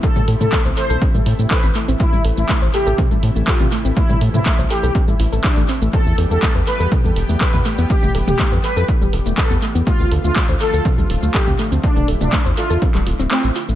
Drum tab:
HH |--o---o---o---o-|--o---o---o---o-|--o---o---o---o-|--o---o---o---o-|
SH |xx-xxx-xxx-xxx-x|xx-xxx-xxx-xxx-x|xx-xxx-xxx-xxx-x|xx-xxx-xxx-xxx-x|
CP |----x-------x---|----x-------x---|----x-------x---|----x-------x---|
T2 |-o-o------------|--------o----o--|-o-o------------|--------o----o--|
BD |o---o---o---o---|o---o---o---o---|o---o---o---o---|o---o---o---o---|

HH |--o---o---o---o-|--o---o---o---o-|--o---o---o---o-|
SH |xx-xxx-xxx-xxx-x|xx-xxx-xxx-xxx-x|xx-xxx-xxx-xxx-x|
CP |----x-------x---|----x-------x---|----x----x--x---|
T2 |-o-o------------|--------o----o--|-o-o------------|
BD |o---o---o---o---|o---o---o---o---|o---o---o-------|